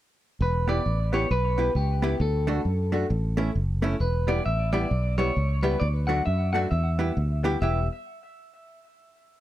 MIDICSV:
0, 0, Header, 1, 6, 480
1, 0, Start_track
1, 0, Tempo, 450789
1, 432, Time_signature, 4, 2, 24, 8
1, 10011, End_track
2, 0, Start_track
2, 0, Title_t, "Clean electric guitar"
2, 0, Program_c, 0, 27
2, 450, Note_on_c, 0, 71, 98
2, 731, Note_off_c, 0, 71, 0
2, 735, Note_on_c, 0, 74, 106
2, 1208, Note_off_c, 0, 74, 0
2, 1213, Note_on_c, 0, 73, 96
2, 1394, Note_off_c, 0, 73, 0
2, 1398, Note_on_c, 0, 71, 106
2, 1839, Note_off_c, 0, 71, 0
2, 1878, Note_on_c, 0, 67, 77
2, 2319, Note_off_c, 0, 67, 0
2, 2356, Note_on_c, 0, 69, 89
2, 3749, Note_off_c, 0, 69, 0
2, 4269, Note_on_c, 0, 71, 79
2, 4561, Note_on_c, 0, 74, 90
2, 4569, Note_off_c, 0, 71, 0
2, 4740, Note_off_c, 0, 74, 0
2, 4745, Note_on_c, 0, 76, 92
2, 5030, Note_off_c, 0, 76, 0
2, 5034, Note_on_c, 0, 74, 96
2, 5512, Note_off_c, 0, 74, 0
2, 5516, Note_on_c, 0, 73, 89
2, 5966, Note_off_c, 0, 73, 0
2, 5990, Note_on_c, 0, 71, 83
2, 6172, Note_on_c, 0, 74, 107
2, 6190, Note_off_c, 0, 71, 0
2, 6254, Note_off_c, 0, 74, 0
2, 6462, Note_on_c, 0, 78, 89
2, 6658, Note_off_c, 0, 78, 0
2, 6662, Note_on_c, 0, 76, 107
2, 6946, Note_off_c, 0, 76, 0
2, 6950, Note_on_c, 0, 78, 92
2, 7003, Note_off_c, 0, 78, 0
2, 7143, Note_on_c, 0, 76, 85
2, 7877, Note_off_c, 0, 76, 0
2, 8113, Note_on_c, 0, 76, 94
2, 8384, Note_off_c, 0, 76, 0
2, 10011, End_track
3, 0, Start_track
3, 0, Title_t, "Upright piano"
3, 0, Program_c, 1, 0
3, 718, Note_on_c, 1, 59, 98
3, 721, Note_on_c, 1, 64, 86
3, 725, Note_on_c, 1, 67, 79
3, 731, Note_on_c, 1, 71, 99
3, 820, Note_off_c, 1, 59, 0
3, 822, Note_off_c, 1, 64, 0
3, 824, Note_off_c, 1, 67, 0
3, 826, Note_off_c, 1, 71, 0
3, 1195, Note_on_c, 1, 59, 97
3, 1200, Note_on_c, 1, 64, 83
3, 1204, Note_on_c, 1, 67, 88
3, 1208, Note_on_c, 1, 71, 106
3, 1298, Note_off_c, 1, 59, 0
3, 1300, Note_off_c, 1, 64, 0
3, 1302, Note_off_c, 1, 67, 0
3, 1304, Note_off_c, 1, 71, 0
3, 1671, Note_on_c, 1, 59, 78
3, 1677, Note_on_c, 1, 64, 75
3, 1681, Note_on_c, 1, 67, 72
3, 1685, Note_on_c, 1, 71, 89
3, 1776, Note_off_c, 1, 59, 0
3, 1779, Note_off_c, 1, 64, 0
3, 1780, Note_off_c, 1, 67, 0
3, 1782, Note_off_c, 1, 71, 0
3, 2150, Note_on_c, 1, 59, 102
3, 2155, Note_on_c, 1, 64, 88
3, 2159, Note_on_c, 1, 67, 94
3, 2165, Note_on_c, 1, 71, 102
3, 2255, Note_off_c, 1, 59, 0
3, 2257, Note_off_c, 1, 64, 0
3, 2259, Note_off_c, 1, 67, 0
3, 2262, Note_off_c, 1, 71, 0
3, 2629, Note_on_c, 1, 57, 92
3, 2637, Note_on_c, 1, 62, 86
3, 2638, Note_on_c, 1, 66, 84
3, 2642, Note_on_c, 1, 69, 108
3, 2734, Note_off_c, 1, 57, 0
3, 2738, Note_off_c, 1, 62, 0
3, 2738, Note_off_c, 1, 66, 0
3, 2740, Note_off_c, 1, 69, 0
3, 3107, Note_on_c, 1, 57, 99
3, 3111, Note_on_c, 1, 62, 88
3, 3116, Note_on_c, 1, 66, 86
3, 3120, Note_on_c, 1, 69, 107
3, 3213, Note_off_c, 1, 57, 0
3, 3215, Note_off_c, 1, 62, 0
3, 3217, Note_off_c, 1, 66, 0
3, 3219, Note_off_c, 1, 69, 0
3, 3587, Note_on_c, 1, 57, 84
3, 3593, Note_on_c, 1, 61, 80
3, 3595, Note_on_c, 1, 64, 76
3, 3602, Note_on_c, 1, 69, 98
3, 3693, Note_off_c, 1, 57, 0
3, 3696, Note_off_c, 1, 61, 0
3, 3697, Note_off_c, 1, 64, 0
3, 3701, Note_off_c, 1, 69, 0
3, 4066, Note_on_c, 1, 57, 103
3, 4071, Note_on_c, 1, 61, 99
3, 4075, Note_on_c, 1, 64, 96
3, 4081, Note_on_c, 1, 69, 108
3, 4173, Note_off_c, 1, 57, 0
3, 4175, Note_off_c, 1, 61, 0
3, 4177, Note_off_c, 1, 64, 0
3, 4180, Note_off_c, 1, 69, 0
3, 4547, Note_on_c, 1, 55, 96
3, 4551, Note_on_c, 1, 59, 76
3, 4558, Note_on_c, 1, 64, 88
3, 4562, Note_on_c, 1, 67, 105
3, 4653, Note_off_c, 1, 55, 0
3, 4655, Note_off_c, 1, 59, 0
3, 4659, Note_off_c, 1, 64, 0
3, 4661, Note_off_c, 1, 67, 0
3, 5032, Note_on_c, 1, 55, 104
3, 5037, Note_on_c, 1, 59, 87
3, 5042, Note_on_c, 1, 64, 84
3, 5044, Note_on_c, 1, 67, 110
3, 5136, Note_off_c, 1, 55, 0
3, 5139, Note_off_c, 1, 59, 0
3, 5141, Note_off_c, 1, 64, 0
3, 5142, Note_off_c, 1, 67, 0
3, 5515, Note_on_c, 1, 55, 86
3, 5518, Note_on_c, 1, 59, 72
3, 5525, Note_on_c, 1, 64, 74
3, 5528, Note_on_c, 1, 67, 95
3, 5618, Note_off_c, 1, 55, 0
3, 5620, Note_off_c, 1, 59, 0
3, 5623, Note_off_c, 1, 64, 0
3, 5625, Note_off_c, 1, 67, 0
3, 5994, Note_on_c, 1, 55, 105
3, 6000, Note_on_c, 1, 59, 93
3, 6001, Note_on_c, 1, 64, 87
3, 6007, Note_on_c, 1, 67, 117
3, 6098, Note_off_c, 1, 55, 0
3, 6101, Note_off_c, 1, 59, 0
3, 6101, Note_off_c, 1, 64, 0
3, 6104, Note_off_c, 1, 67, 0
3, 6469, Note_on_c, 1, 54, 94
3, 6473, Note_on_c, 1, 57, 80
3, 6477, Note_on_c, 1, 62, 89
3, 6480, Note_on_c, 1, 66, 98
3, 6576, Note_off_c, 1, 54, 0
3, 6578, Note_off_c, 1, 57, 0
3, 6580, Note_off_c, 1, 62, 0
3, 6582, Note_off_c, 1, 66, 0
3, 6952, Note_on_c, 1, 54, 93
3, 6955, Note_on_c, 1, 57, 85
3, 6961, Note_on_c, 1, 62, 84
3, 6966, Note_on_c, 1, 66, 103
3, 7058, Note_off_c, 1, 54, 0
3, 7059, Note_off_c, 1, 57, 0
3, 7062, Note_off_c, 1, 62, 0
3, 7065, Note_off_c, 1, 66, 0
3, 7433, Note_on_c, 1, 55, 78
3, 7437, Note_on_c, 1, 59, 70
3, 7441, Note_on_c, 1, 64, 77
3, 7445, Note_on_c, 1, 67, 82
3, 7538, Note_off_c, 1, 55, 0
3, 7541, Note_off_c, 1, 59, 0
3, 7542, Note_off_c, 1, 64, 0
3, 7544, Note_off_c, 1, 67, 0
3, 7914, Note_on_c, 1, 55, 100
3, 7919, Note_on_c, 1, 59, 89
3, 7921, Note_on_c, 1, 64, 89
3, 7927, Note_on_c, 1, 67, 116
3, 8019, Note_off_c, 1, 55, 0
3, 8022, Note_off_c, 1, 59, 0
3, 8023, Note_off_c, 1, 64, 0
3, 8026, Note_off_c, 1, 67, 0
3, 8104, Note_on_c, 1, 55, 72
3, 8107, Note_on_c, 1, 59, 71
3, 8110, Note_on_c, 1, 64, 78
3, 8114, Note_on_c, 1, 67, 93
3, 8325, Note_off_c, 1, 55, 0
3, 8327, Note_off_c, 1, 59, 0
3, 8329, Note_off_c, 1, 64, 0
3, 8331, Note_off_c, 1, 67, 0
3, 10011, End_track
4, 0, Start_track
4, 0, Title_t, "Hollow-body jazz guitar"
4, 0, Program_c, 2, 26
4, 719, Note_on_c, 2, 59, 69
4, 730, Note_on_c, 2, 64, 84
4, 733, Note_on_c, 2, 67, 81
4, 851, Note_off_c, 2, 59, 0
4, 857, Note_off_c, 2, 64, 0
4, 858, Note_off_c, 2, 67, 0
4, 1201, Note_on_c, 2, 59, 84
4, 1207, Note_on_c, 2, 64, 75
4, 1212, Note_on_c, 2, 67, 82
4, 1331, Note_off_c, 2, 59, 0
4, 1335, Note_off_c, 2, 64, 0
4, 1337, Note_off_c, 2, 67, 0
4, 1680, Note_on_c, 2, 59, 75
4, 1688, Note_on_c, 2, 64, 74
4, 1693, Note_on_c, 2, 67, 81
4, 1810, Note_off_c, 2, 59, 0
4, 1815, Note_off_c, 2, 64, 0
4, 1817, Note_off_c, 2, 67, 0
4, 2155, Note_on_c, 2, 59, 97
4, 2167, Note_on_c, 2, 64, 106
4, 2170, Note_on_c, 2, 67, 92
4, 2288, Note_off_c, 2, 59, 0
4, 2294, Note_off_c, 2, 64, 0
4, 2295, Note_off_c, 2, 67, 0
4, 2632, Note_on_c, 2, 57, 87
4, 2637, Note_on_c, 2, 62, 89
4, 2643, Note_on_c, 2, 66, 88
4, 2766, Note_off_c, 2, 57, 0
4, 2768, Note_off_c, 2, 62, 0
4, 2771, Note_off_c, 2, 66, 0
4, 3111, Note_on_c, 2, 57, 82
4, 3116, Note_on_c, 2, 62, 73
4, 3125, Note_on_c, 2, 66, 82
4, 3246, Note_off_c, 2, 57, 0
4, 3248, Note_off_c, 2, 62, 0
4, 3253, Note_off_c, 2, 66, 0
4, 3589, Note_on_c, 2, 57, 99
4, 3598, Note_on_c, 2, 61, 89
4, 3601, Note_on_c, 2, 64, 95
4, 3725, Note_off_c, 2, 57, 0
4, 3729, Note_off_c, 2, 61, 0
4, 3730, Note_off_c, 2, 64, 0
4, 4071, Note_on_c, 2, 57, 96
4, 4077, Note_on_c, 2, 61, 91
4, 4087, Note_on_c, 2, 64, 108
4, 4206, Note_off_c, 2, 57, 0
4, 4209, Note_off_c, 2, 61, 0
4, 4214, Note_off_c, 2, 64, 0
4, 4555, Note_on_c, 2, 55, 90
4, 4557, Note_on_c, 2, 59, 93
4, 4564, Note_on_c, 2, 64, 88
4, 4688, Note_off_c, 2, 55, 0
4, 4689, Note_off_c, 2, 59, 0
4, 4692, Note_off_c, 2, 64, 0
4, 5033, Note_on_c, 2, 55, 99
4, 5043, Note_on_c, 2, 59, 98
4, 5047, Note_on_c, 2, 64, 98
4, 5167, Note_off_c, 2, 55, 0
4, 5172, Note_off_c, 2, 59, 0
4, 5174, Note_off_c, 2, 64, 0
4, 5514, Note_on_c, 2, 55, 85
4, 5522, Note_on_c, 2, 59, 90
4, 5528, Note_on_c, 2, 64, 92
4, 5648, Note_off_c, 2, 55, 0
4, 5652, Note_off_c, 2, 59, 0
4, 5655, Note_off_c, 2, 64, 0
4, 5995, Note_on_c, 2, 55, 98
4, 6003, Note_on_c, 2, 59, 91
4, 6006, Note_on_c, 2, 64, 94
4, 6129, Note_off_c, 2, 55, 0
4, 6133, Note_off_c, 2, 59, 0
4, 6135, Note_off_c, 2, 64, 0
4, 6482, Note_on_c, 2, 57, 82
4, 6486, Note_on_c, 2, 62, 81
4, 6492, Note_on_c, 2, 66, 88
4, 6613, Note_off_c, 2, 57, 0
4, 6615, Note_off_c, 2, 62, 0
4, 6618, Note_off_c, 2, 66, 0
4, 6970, Note_on_c, 2, 57, 90
4, 6978, Note_on_c, 2, 62, 87
4, 6981, Note_on_c, 2, 66, 96
4, 7097, Note_off_c, 2, 57, 0
4, 7101, Note_off_c, 2, 62, 0
4, 7103, Note_off_c, 2, 66, 0
4, 7440, Note_on_c, 2, 59, 90
4, 7445, Note_on_c, 2, 64, 83
4, 7454, Note_on_c, 2, 67, 87
4, 7573, Note_off_c, 2, 59, 0
4, 7575, Note_off_c, 2, 64, 0
4, 7580, Note_off_c, 2, 67, 0
4, 7923, Note_on_c, 2, 59, 86
4, 7929, Note_on_c, 2, 64, 97
4, 7934, Note_on_c, 2, 67, 111
4, 8054, Note_off_c, 2, 59, 0
4, 8057, Note_off_c, 2, 64, 0
4, 8060, Note_off_c, 2, 67, 0
4, 8111, Note_on_c, 2, 59, 77
4, 8122, Note_on_c, 2, 64, 88
4, 8127, Note_on_c, 2, 67, 86
4, 8287, Note_off_c, 2, 59, 0
4, 8292, Note_off_c, 2, 64, 0
4, 8295, Note_off_c, 2, 67, 0
4, 10011, End_track
5, 0, Start_track
5, 0, Title_t, "Fingered electric bass"
5, 0, Program_c, 3, 33
5, 432, Note_on_c, 3, 28, 114
5, 838, Note_off_c, 3, 28, 0
5, 913, Note_on_c, 3, 33, 80
5, 1319, Note_off_c, 3, 33, 0
5, 1390, Note_on_c, 3, 35, 89
5, 1797, Note_off_c, 3, 35, 0
5, 1863, Note_on_c, 3, 37, 87
5, 2273, Note_off_c, 3, 37, 0
5, 2340, Note_on_c, 3, 38, 116
5, 2751, Note_off_c, 3, 38, 0
5, 2822, Note_on_c, 3, 42, 79
5, 3232, Note_off_c, 3, 42, 0
5, 3304, Note_on_c, 3, 33, 95
5, 3713, Note_off_c, 3, 33, 0
5, 3784, Note_on_c, 3, 30, 96
5, 4194, Note_off_c, 3, 30, 0
5, 4262, Note_on_c, 3, 28, 108
5, 4673, Note_off_c, 3, 28, 0
5, 4748, Note_on_c, 3, 33, 84
5, 5157, Note_off_c, 3, 33, 0
5, 5228, Note_on_c, 3, 35, 91
5, 5637, Note_off_c, 3, 35, 0
5, 5713, Note_on_c, 3, 37, 85
5, 6120, Note_off_c, 3, 37, 0
5, 6190, Note_on_c, 3, 38, 110
5, 6599, Note_off_c, 3, 38, 0
5, 6673, Note_on_c, 3, 42, 81
5, 7081, Note_off_c, 3, 42, 0
5, 7150, Note_on_c, 3, 40, 97
5, 7559, Note_off_c, 3, 40, 0
5, 7632, Note_on_c, 3, 38, 95
5, 8040, Note_off_c, 3, 38, 0
5, 8109, Note_on_c, 3, 28, 100
5, 8382, Note_off_c, 3, 28, 0
5, 10011, End_track
6, 0, Start_track
6, 0, Title_t, "Muted hollow-body jazz guitar strokes"
6, 3301, Note_on_c, 9, 29, 36
6, 3407, Note_off_c, 9, 29, 0
6, 7156, Note_on_c, 9, 29, 38
6, 7263, Note_off_c, 9, 29, 0
6, 10011, End_track
0, 0, End_of_file